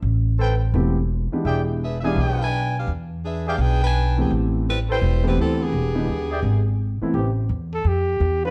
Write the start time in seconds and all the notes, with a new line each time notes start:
0.02 A1
0.39 A4 B4 C5 G5
0.74 E1 E3 A3 B3 C4 G4
1.32 E3 G#3 B3 D4 G4, muted upright bass stroke
1.45 E1 G#4 D5 E5 G5
1.83 D4 G#4 B4 E5
2.00 E3 G#3 B3 G#4 D5 E5 G#5
2.04 D4 G4 B4 F5
2.16 B1 D4 G#4 B4 G5
2.42 D4 B4 G5 G#5
2.78 D4 G4 B4 F5
2.87 E2
3.25 D4 G#4 B4 E5
3.46 D4 G4 G#4 B4 D5 E5 F5 G5
3.58 B1 D4 G#4 B4 G5
3.83 D4 B4 G5 G#5
4.17 E3 A3 B3 C4 D4 G4 G#4 B4 G5
4.30 A1
4.69 G3 C4 E4 B4
4.89 G3 E4 A4 B4 C5 G5
5.02 E1
5.23 E3 G3 A3 B3 C4 E4 G4 B4
5.37 D2 G3 C4 E4 A4
5.62 D3 B3 G4 G#4
5.72 E1
5.95 E3 G#3 B3 D4 G4
6.08 D#2
6.31 G#4 D5 E5 G5
6.43 G#1
7.01 E3 A3 B3 C4 E4, muted upright bass stroke
7.14 A1 C3 A3 B3 G4
7.49 E2
7.74 A4
7.84 F2 G4
8.20 E2
8.43 D3 F3 C4 F4 B4